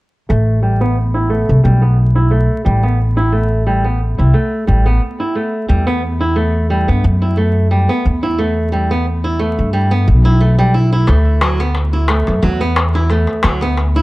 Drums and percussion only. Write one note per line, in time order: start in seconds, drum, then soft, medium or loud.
11.07 darbuka tek soft
11.41 darbuka tek medium
11.60 darbuka tek soft
11.75 darbuka tek soft
12.08 darbuka tek medium
12.27 darbuka tek soft
12.43 darbuka tek soft
12.76 darbuka tek medium
12.95 darbuka tek soft
13.10 darbuka tek soft
13.27 darbuka tek soft
13.43 darbuka tek medium
13.61 darbuka tek soft
13.77 darbuka tek soft